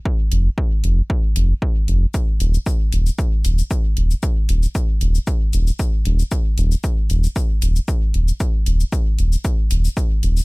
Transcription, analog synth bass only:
X:1
M:4/4
L:1/8
Q:"Swing 16ths" 1/4=115
K:Ebdor
V:1 name="Analog synth bass" clef=bass
z F,,, z F,,, z F,,, z F,,, | z E,,, z E,,, z E,,, z E,,, | z E,,, z E,,, z E,,, z E,,, | z E,,, z E,,, z E,,, z E,,, |
z E,,, z E,,, z E,,, z E,,, |]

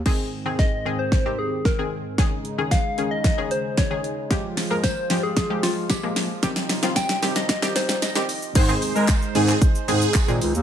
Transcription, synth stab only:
X:1
M:4/4
L:1/16
Q:1/4=113
K:Ab
V:1 name="Synth stab"
[E,CA]2 z [E,CA]2 z [E,CA]2 z [E,CG]3 z [E,CA]2 z | [E,DA]2 z [E,DA]2 z [E,DA]2 z [E,DA]3 z [E,DA]2 z | [F,A,G]2 z [F,A,B]2 z [F,A,G]2 z [F,A,G]3 z [F,A,B,]2 z | [E,CG]2 z [E,CF]2 z [E,CG]2 z [E,CG]3 z [E,CG]2 z |
[E,A,CA] [E,A,CA]3 z2 [E,A,CA]3 z [E,A,CA]2 z [E,A,CA]2 z |]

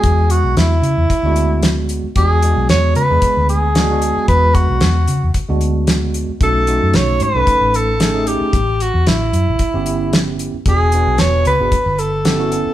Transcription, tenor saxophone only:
X:1
M:4/4
L:1/8
Q:"Swing 16ths" 1/4=113
K:Emix
V:1 name="Tenor saxophone"
G F E4- E z | G2 c B2 G3 | B F3 z4 | A2 c B2 A2 =G- |
=G F E4- E z | G2 c B2 A3 |]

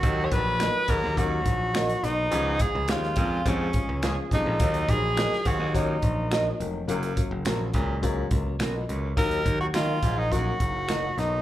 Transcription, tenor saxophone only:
X:1
M:4/4
L:1/16
Q:1/4=105
K:D#m
V:1 name="Tenor saxophone"
F3/2 c/2 B4 A2 F6 D2- | D2 G2 E4 C4 z2 D2- | D2 G4 F2 D6 z2 | z16 |
A3 F E3 D F6 D2 |]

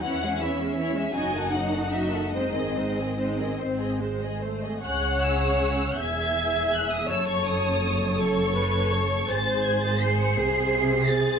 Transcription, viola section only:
X:1
M:6/8
L:1/16
Q:3/8=54
K:C#m
V:1 name="Viola section"
[E,E] [G,C] [E,E] [G,C] [E,E] [G,C] [F,D] [D,F] [F,D] [D,F] [F,D] [D,F] | [G,D] [D,^B,] [G,D] [D,B,] [G,D] [D,B,] B,2 G,2 A,2 | c6 e6 | c6 A2 B2 c2 |
^B6 G6 |]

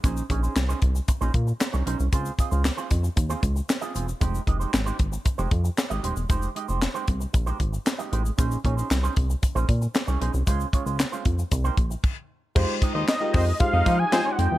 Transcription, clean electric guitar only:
X:1
M:4/4
L:1/16
Q:1/4=115
K:Fm
V:1 name="Clean electric guitar"
[DEAc] z [DEAd] [DEAc] z [DEAc] z3 [DEAc] z3 [DEAd] [DEAc] z | [CFAc] z [CFAe] [CFAc] z [CFAc] z3 [CFAc] z3 [CFAe] [CFAc] z | [A,EGc] z [A,EGe] [A,EGc] z [A,EGc] z3 [A,EGc] z3 [A,EGe] [A,EGc] z | [A,EGc] z [A,EGe] [A,EGc] z [A,EGc] z3 [A,EGc] z3 [A,EGe] [A,EGc] z |
[DEAc] z [DEAd] [DEAc] z [DEAc] z3 [DEAc] z3 [DEAd] [DEAc] z | [A,DFc] z [A,DFd] [A,DFc] z [A,DFc] z3 [B,EGc] z6 | [A,EGc] z [A,EGe] [A,EGc] z2 [A,EGe] z3 [A,EGc] [A,EGe] z [A,EGc] [A,EGc] z |]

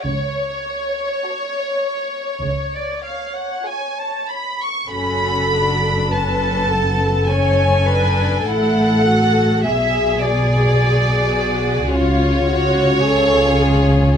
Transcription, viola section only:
X:1
M:4/4
L:1/8
Q:1/4=50
K:F#m
V:1 name="Viola section"
c6- c z | A2 B A c B A2 | G4 ^E2 A G |]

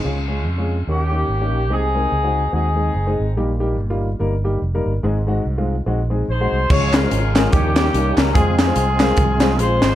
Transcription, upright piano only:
X:1
M:4/4
L:1/16
Q:"Swing" 1/4=144
K:Db
V:1 name="Upright piano"
[A,DFA] z [A,DFA]2 z [A,DFA]2 z [B,DE=G] z [B,DEG]2 z [B,DEG]2 z | [A,CEA] z [A,CEB]2 z [A,CEG]2 z [A,CEG] z [A,CEA]2 z [A,CEA]2 z | [=G,B,E=G] z [G,B,EG]2 z [G,B,EF]2 z [G,B,EB] z [G,B,EG]2 z [G,B,EB]2 z | [A,CEA] z [A,CEG]2 z [A,CEF]2 z [A,CEG] z [A,CEA]2 z [A,CEG]2 z |
[A,DFAd]2 z [A,DFAc]2 z [A,DFAB]2 z2 [B,DE=GB] z [B,DEGB]2 z2 | [A,CFAc]2 z [A,CFAc]2 z [A,CFAB]2 z2 [A,CFAc] z [A,CFAc]2 z2 |]
V:2 name="Upright piano" clef=bass
D,6 z2 E,6 z2 | C,6 z8 z2 | B,,6 z8 z2 | A,,6 z8 z2 |
D,6 z2 E,6 z2 | z16 |]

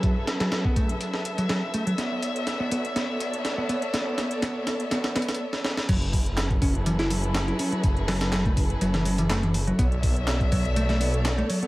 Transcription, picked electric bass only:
X:1
M:4/4
L:1/16
Q:1/4=123
K:F#m
V:1 name="Picked electric bass"
F, z2 F, F, B, A, z4 F, F, z A, F, | B,4 z B, B, z B,4 z B, B, z | B,4 B,4 B,2 B,2 z4 | F, z4 z C z E, E F, z2 E C F, |
z2 F,3 A, z2 F, E, F, E, A, E, z F, | B, z4 z F, z A, A, B, z2 A, F, B, |]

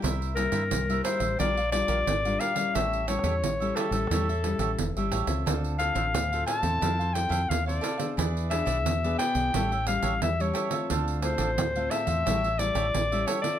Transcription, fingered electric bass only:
X:1
M:4/4
L:1/16
Q:1/4=88
K:Aphr
V:1 name="Fingered electric bass" clef=bass
C,,3 G,, C,,2 z A,,, B,,,3 B,,, ^G,,,2 z2 | A,,,3 E,, A,,,2 z A,,, E,,3 A,,, E,,, G,,, A,,, ^C,, | D,,3 A,,, D,,2 z E,, F,,3 F,, _E,,2 z2 | E,,3 =B,,, E,,2 z B,,, A,,,3 A,,, E,,2 z2 |
D,,3 A,,, D,,2 z E,, A,,,3 A,,, A,,,2 z2 |]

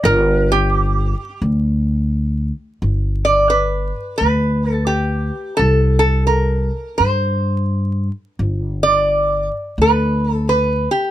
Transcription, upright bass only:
X:1
M:4/4
L:1/8
Q:"Swing" 1/4=86
K:G
V:1 name="Upright bass" clef=bass
G,,,4 D,,4 | G,,,4 D,,4 | C,,4 G,,4 | G,,,4 D,,4 |]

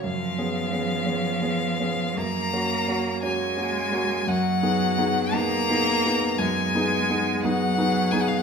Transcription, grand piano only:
X:1
M:4/4
L:1/8
Q:1/4=57
K:G#dor
V:1 name="Grand piano"
(3F,, [B,CG] [B,CG] (3[B,CG] [B,CG] [B,CG] (3F,, [A,CF] [A,CF] (3[A,CF] [A,CF] [A,CF] | (3F,, [B,DG] [B,DG] (3[B,DG] [B,DG] [B,DG] (3F,, [B,DG] [B,DG] (3[B,DG] [B,DG] [B,DG] |]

